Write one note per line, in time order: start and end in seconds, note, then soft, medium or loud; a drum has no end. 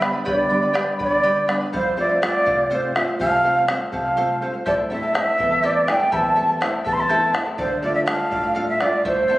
0.00 0.41 G3 soft
0.00 0.41 B3 soft
0.00 0.42 D4 soft
0.00 0.13 B4 medium
0.00 0.13 D5 medium
0.00 0.13 G5 soft
0.00 0.12 B5 medium
0.00 bombo rim medium
0.13 0.24 B4 soft
0.13 0.25 D5 soft
0.13 0.25 B5 soft
0.25 0.74 D3 medium
0.25 0.50 G4 medium
0.25 0.49 B4 medium
0.25 0.49 D5 medium
0.25 0.96 D5 medium
0.25 0.48 G5 medium
0.25 0.50 B5 medium
0.25 bombo rim soft
0.25 bombo low medium
0.39 bombo rim soft
0.49 0.73 G3 soft
0.49 0.74 B3 soft
0.49 0.74 D4 soft
0.49 0.63 B4 medium
0.49 0.62 D5 medium
0.49 0.62 G5 medium
0.49 0.61 B5 medium
0.62 0.73 B4 soft
0.62 0.73 D5 soft
0.62 0.73 B5 soft
0.73 1.14 G3 soft
0.73 1.14 B3 soft
0.73 0.99 G4 medium
0.73 0.98 B4 medium
0.73 0.98 D5 medium
0.73 0.98 G5 medium
0.73 0.99 B5 medium
0.73 bombo rim medium
0.99 1.47 D3 medium
0.99 1.11 B4 medium
0.99 1.10 D5 medium
0.99 1.52 D5 medium
0.99 1.12 G5 medium
0.99 1.09 B5 medium
0.99 bombo low medium
1.10 1.22 B4 soft
1.10 1.23 D5 soft
1.10 1.23 B5 soft
1.23 1.47 G3 soft
1.23 1.47 B3 soft
1.23 1.48 D4 medium
1.23 1.48 G4 medium
1.23 1.47 B4 medium
1.23 1.48 D5 medium
1.23 1.46 G5 medium
1.23 1.48 B5 medium
1.48 1.68 G3 soft
1.48 1.68 B3 soft
1.48 1.69 D4 soft
1.48 1.61 B4 medium
1.48 1.60 D5 medium
1.48 1.60 G5 medium
1.48 1.59 B5 medium
1.48 bombo rim medium
1.60 1.72 B4 soft
1.60 1.73 D5 soft
1.60 1.73 B5 soft
1.73 2.21 F2 medium
1.73 1.95 A4 medium
1.73 1.96 C5 medium
1.73 1.97 F5 medium
1.73 bombo rim soft
1.73 bombo low medium
1.86 bombo rim soft
1.97 2.21 A3 soft
1.97 2.22 C4 soft
1.97 2.22 F4 medium
1.97 2.09 A4 medium
1.97 2.09 C5 medium
1.97 2.21 D5 medium
1.97 2.21 E5 medium
1.97 2.08 F5 medium
2.09 2.21 C5 soft
2.09 2.22 F5 soft
2.22 2.61 A3 soft
2.22 2.62 C4 soft
2.22 2.62 F4 medium
2.22 2.44 A4 medium
2.22 2.44 C5 medium
2.22 2.68 D5 medium
2.22 2.45 F5 medium
2.22 2.68 F5 medium
2.22 bombo rim medium
2.45 2.94 C3 medium
2.45 2.58 A4 medium
2.45 2.58 C5 medium
2.45 2.56 F5 medium
2.45 bombo low medium
2.58 2.70 C5 soft
2.58 2.70 F5 soft
2.70 2.94 A3 soft
2.70 2.94 C4 soft
2.70 2.95 F4 soft
2.70 2.94 A4 medium
2.70 2.95 C5 medium
2.70 2.94 C5 medium
2.70 2.94 D5 medium
2.70 2.95 F5 medium
2.95 3.34 A3 soft
2.95 3.35 C4 soft
2.95 3.35 F4 medium
2.95 3.07 A4 soft
2.95 3.08 C5 medium
2.95 3.02 E5 medium
2.95 3.02 F5 medium
2.95 3.07 F5 medium
2.95 bombo rim medium
3.08 3.19 C5 soft
3.08 3.20 F5 soft
3.20 3.67 C3 medium
3.20 3.43 A4 medium
3.20 3.44 C5 medium
3.20 3.65 F5 loud
3.20 3.45 F5 medium
3.20 3.65 A5 medium
3.20 bombo low medium
3.44 3.67 A3 soft
3.44 3.68 C4 soft
3.44 3.68 F4 soft
3.44 3.56 A4 medium
3.44 3.56 C5 medium
3.44 3.55 F5 medium
3.44 bombo rim soft
3.56 3.67 C5 soft
3.56 3.68 F5 soft
3.68 4.08 A3 soft
3.68 4.08 C4 soft
3.68 4.08 F4 soft
3.68 3.91 A4 medium
3.68 3.92 C5 medium
3.68 3.92 F5 medium
3.68 bombo rim medium
3.92 4.40 C3 medium
3.92 4.05 A4 medium
3.92 4.05 C5 medium
3.92 4.03 F5 medium
3.92 4.44 F5 medium
3.92 4.45 A5 medium
3.92 bombo low medium
4.05 4.16 C5 soft
4.05 4.16 F5 soft
4.17 4.41 A3 soft
4.17 4.41 C4 soft
4.17 4.42 F4 soft
4.17 4.41 A4 medium
4.17 4.41 C5 medium
4.17 4.42 F5 medium
4.17 bombo rim soft
4.42 4.61 A3 soft
4.42 4.62 C4 soft
4.42 4.62 F4 soft
4.42 4.54 A4 soft
4.42 4.54 C5 medium
4.42 4.52 F5 medium
4.53 4.64 C5 soft
4.53 4.65 F5 soft
4.66 5.14 A2 medium
4.66 4.90 E4 medium
4.66 4.90 A4 medium
4.66 4.90 C5 medium
4.66 4.73 D5 medium
4.66 4.89 E5 medium
4.66 4.90 A5 medium
4.66 4.73 A5 medium
4.66 bombo rim soft
4.66 bombo low medium
4.79 bombo rim soft
4.90 5.14 A3 soft
4.90 5.14 C4 soft
4.90 5.03 E4 soft
4.90 5.14 E4 soft
4.90 5.02 A4 medium
4.90 5.03 E5 medium
4.90 5.14 E5 medium
4.90 5.02 A5 medium
5.03 5.14 E4 soft
5.03 5.14 A4 soft
5.03 5.14 A5 soft
5.14 5.54 A3 soft
5.14 5.54 C4 soft
5.14 5.37 E4 medium
5.14 5.38 A4 medium
5.14 5.39 C5 medium
5.14 5.63 E5 medium
5.14 5.37 E5 medium
5.14 5.66 E5 medium
5.14 5.38 A5 medium
5.14 bombo rim medium
5.38 5.87 E2 medium
5.38 5.51 E4 medium
5.38 5.50 A4 medium
5.38 5.51 E5 medium
5.38 5.50 A5 medium
5.38 bombo low medium
5.51 5.62 E4 soft
5.51 5.62 A4 soft
5.51 5.62 A5 soft
5.63 5.88 A3 soft
5.63 5.88 C4 soft
5.63 5.87 E4 medium
5.63 5.88 E4 medium
5.63 5.87 A4 medium
5.63 5.88 C5 medium
5.63 5.90 D5 medium
5.63 5.89 D5 medium
5.63 5.67 E5 medium
5.63 5.86 E5 medium
5.63 5.88 A5 medium
5.87 6.28 A3 soft
5.87 6.28 C4 soft
5.87 6.00 E4 medium
5.87 6.28 E4 medium
5.87 5.99 A4 medium
5.87 6.00 E5 soft
5.87 6.14 G5 medium
5.87 5.92 G#5 medium
5.87 5.94 G#5 medium
5.87 5.98 A5 medium
5.87 bombo rim medium
5.93 6.13 G5 medium
6.00 6.11 E4 soft
6.00 6.12 A4 soft
6.00 6.12 A5 soft
6.12 6.60 E2 medium
6.12 6.35 E4 medium
6.12 6.36 A4 medium
6.12 6.37 C5 medium
6.12 6.34 E5 medium
6.12 6.61 A5 medium
6.12 6.36 A5 medium
6.12 6.61 A5 medium
6.12 6.16 B5 medium
6.12 bombo rim soft
6.12 bombo low medium
6.36 6.61 A3 soft
6.36 6.61 C4 soft
6.36 6.48 E4 medium
6.36 6.61 E4 soft
6.36 6.48 A4 medium
6.36 6.49 E5 medium
6.36 6.47 A5 medium
6.48 6.60 E4 soft
6.48 6.60 A4 soft
6.48 6.60 A5 soft
6.61 7.01 A3 soft
6.61 7.01 C4 soft
6.61 6.84 E4 medium
6.61 7.01 E4 medium
6.61 6.85 A4 medium
6.61 6.86 C5 medium
6.61 6.83 E5 medium
6.61 6.85 A5 medium
6.61 bombo rim medium
6.84 7.34 E2 medium
6.84 6.98 E4 medium
6.84 6.97 A4 medium
6.84 6.97 E5 medium
6.84 6.94 A5 medium
6.84 6.95 A5 loud
6.84 6.96 A5 medium
6.84 bombo low medium
6.93 7.01 C6 medium
6.97 7.09 E4 soft
6.97 7.09 A4 soft
6.97 7.09 A5 soft
6.97 7.41 A5 medium
6.97 7.04 B5 medium
7.03 7.41 A5 medium
7.09 7.33 A3 soft
7.09 7.34 C4 soft
7.09 7.33 E4 medium
7.09 7.34 E4 medium
7.09 7.33 A4 medium
7.09 7.34 C5 medium
7.09 7.32 E5 medium
7.09 7.34 A5 medium
7.33 7.54 A3 soft
7.33 7.54 C4 soft
7.33 7.46 E4 medium
7.33 7.55 E4 soft
7.33 7.45 A4 medium
7.33 7.46 E5 medium
7.33 7.44 A5 medium
7.33 bombo rim medium
7.46 7.58 E4 soft
7.46 7.57 A4 soft
7.46 7.58 A5 soft
7.58 8.07 D3 medium
7.58 7.81 A4 medium
7.58 7.82 C5 medium
7.58 7.81 D5 medium
7.58 7.82 F5 medium
7.58 bombo rim soft
7.58 bombo low medium
7.82 8.06 A3 soft
7.82 8.07 D4 soft
7.82 8.07 F4 soft
7.82 7.95 A4 medium
7.82 7.94 D5 medium
7.82 7.93 D5 medium
7.82 7.95 E5 medium
7.82 7.93 F5 medium
7.94 8.05 D5 soft
7.94 8.00 E5 medium
7.94 8.06 F5 soft
7.94 8.01 F5 medium
8.06 8.47 A3 soft
8.06 8.47 D4 soft
8.06 8.47 F4 medium
8.06 8.29 A4 medium
8.06 8.30 D5 medium
8.06 8.64 F5 medium
8.06 8.31 F5 medium
8.06 8.65 A5 medium
8.06 bombo rim medium
8.30 8.79 A2 medium
8.30 8.44 A4 medium
8.30 8.43 D5 medium
8.30 8.42 F5 medium
8.30 bombo low medium
8.43 8.54 D5 soft
8.43 8.55 F5 soft
8.55 8.80 A3 soft
8.55 8.81 D4 soft
8.55 8.81 F4 soft
8.55 8.79 A4 medium
8.55 8.80 D5 medium
8.55 8.80 F5 medium
8.68 8.82 E5 medium
8.68 8.84 F5 medium
8.80 9.01 A3 soft
8.80 9.01 D4 soft
8.80 9.01 F4 soft
8.80 8.93 A4 medium
8.80 9.05 D5 medium
8.80 8.92 D5 soft
8.80 9.06 E5 medium
8.80 8.91 F5 medium
8.80 bombo rim medium
8.92 9.04 D5 soft
8.92 9.05 F5 soft
9.05 9.39 A2 medium
9.05 9.28 E4 medium
9.05 9.28 A4 medium
9.05 9.30 C5 medium
9.05 9.39 C5 medium
9.05 9.27 E5 medium
9.05 9.29 A5 medium
9.05 bombo low medium
9.28 9.39 A3 soft
9.28 9.39 C4 soft
9.28 9.39 E4 medium
9.28 9.39 E4 soft
9.28 9.39 A4 medium
9.28 9.39 E5 medium
9.28 9.39 A5 medium
9.28 bombo rim soft